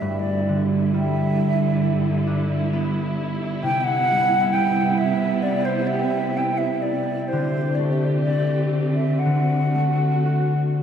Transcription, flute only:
0.00 0.21 E5 medium
0.19 0.64 D5 medium
0.90 2.21 E5 medium
3.64 3.80 G5 medium
3.80 4.54 F#5 loud
3.80 3.85 G5 medium
4.53 4.99 G5 loud
4.98 5.44 E5 medium
5.43 5.66 D5 medium
5.65 5.88 C5 medium
5.87 6.38 E5 medium
6.37 6.59 G5 medium
6.58 6.83 E5 medium
6.82 7.29 D5 medium
7.28 7.76 C5 medium
7.75 7.90 D5 medium
7.90 7.93 D5 medium
7.90 8.06 E5 medium
8.05 8.07 D5 medium
8.21 8.65 D5 medium
8.95 9.20 E5 medium
9.19 10.72 F#5 medium

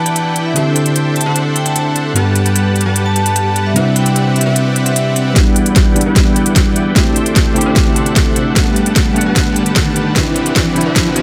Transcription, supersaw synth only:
0.00 0.54 E4 medium
0.00 0.54 B4 medium
0.00 0.54 D5 medium
0.00 0.54 F#5 medium
0.00 0.54 G5 medium
0.56 1.24 D4 medium
0.56 1.24 A4 medium
0.56 1.24 C5 medium
0.56 1.24 E5 medium
0.56 1.24 G5 medium
1.26 2.14 D4 medium
1.26 2.14 A4 medium
1.26 2.14 C5 medium
1.26 2.14 E5 medium
1.26 2.13 F#5 medium
2.16 2.83 G3 medium
2.16 2.84 G4 medium
2.16 2.83 B4 medium
2.16 2.83 F#5 medium
2.16 2.83 A5 medium
2.86 3.73 G3 medium
2.86 3.73 G4 medium
2.86 3.73 B4 medium
2.86 3.73 F#5 medium
2.86 3.73 A5 medium
3.76 4.44 C4 medium
3.76 4.44 G4 medium
3.76 4.44 B4 medium
3.76 4.44 D5 medium
3.76 4.44 E5 medium
3.76 4.44 F#5 medium
4.46 5.34 C4 medium
4.46 5.34 G4 medium
4.46 5.34 B4 medium
4.46 5.33 D5 medium
4.46 5.34 E5 medium
4.46 5.34 F#5 medium
5.36 6.03 E4 medium
5.36 6.04 B4 medium
5.36 6.04 D5 medium
5.36 6.04 F#5 medium
5.36 6.04 G5 medium
6.06 6.94 E4 medium
6.06 6.94 B4 medium
6.06 6.94 D5 medium
6.06 6.94 F#5 medium
6.06 6.94 G5 medium
6.96 7.64 D4 medium
6.96 7.64 A4 medium
6.96 7.64 C5 medium
6.96 7.64 E5 medium
6.96 7.64 G5 medium
7.66 8.54 D4 medium
7.66 8.54 A4 medium
7.66 8.54 C5 medium
7.66 8.54 E5 medium
7.66 8.54 F#5 medium
8.56 9.24 G3 medium
8.56 9.24 G4 medium
8.56 9.24 B4 medium
8.56 9.24 F#5 medium
8.56 9.24 A5 medium
9.26 10.14 G3 medium
9.26 10.14 G4 medium
9.26 10.14 B4 medium
9.26 10.14 F#5 medium
9.26 10.14 A5 medium
10.16 10.84 C4 medium
10.16 10.84 G4 medium
10.16 10.84 B4 medium
10.16 10.84 D5 medium
10.16 10.84 E5 medium
10.16 10.84 F#5 medium
10.86 11.14 C4 medium
10.86 11.14 G4 medium
10.86 11.14 B4 medium
10.86 11.14 D5 medium
10.86 11.14 E5 medium
10.86 11.14 F#5 medium
11.16 11.22 C4 medium
11.16 11.22 G4 medium
11.16 11.22 B4 medium
11.16 11.22 D5 medium
11.16 11.22 E5 medium
11.16 11.22 A5 loud

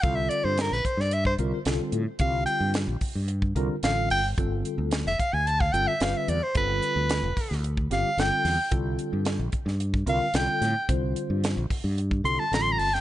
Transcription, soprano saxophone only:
0.02 0.16 F5 medium
0.15 0.31 E5 medium
0.30 0.46 D5 medium
0.44 0.62 C5 medium
0.61 0.74 A#4 medium
0.73 0.87 B4 medium
0.85 1.03 C5 medium
1.01 1.15 D5 medium
1.14 1.26 E5 medium
1.26 1.35 C5 medium
2.21 2.45 F5 medium
2.46 2.72 G5 medium
3.84 4.09 F5 medium
4.11 4.28 G5 loud
5.08 5.21 E5 medium
5.19 5.35 F5 medium
5.34 5.48 G#5 medium
5.47 5.62 A5 medium
5.61 5.74 F5 medium
5.73 5.89 G5 loud
5.88 6.04 E5 medium
6.02 6.18 F5 medium
6.17 6.31 E5 medium
6.30 6.45 D5 medium
6.43 6.56 C5 medium
6.57 7.61 B4 medium
7.93 8.22 F5 medium
8.20 8.73 G5 loud
10.09 10.37 F5 medium
10.36 10.90 G5 medium
12.25 12.41 C6 medium
12.39 12.56 A5 medium
12.54 12.63 A#5 medium
12.62 12.74 C6 medium
12.72 12.80 A#5 medium
12.79 12.95 A5 loud
12.94 13.01 G5 medium

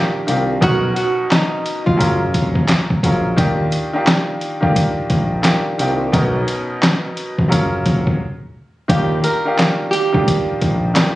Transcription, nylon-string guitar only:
0.00 0.57 G4 medium
0.63 0.94 F#4 loud
0.96 1.27 F#4 medium
1.32 1.84 D#4 medium
1.86 2.17 F4 medium
8.90 9.21 G4 medium
9.24 9.89 A#4 medium
9.91 11.15 G4 medium

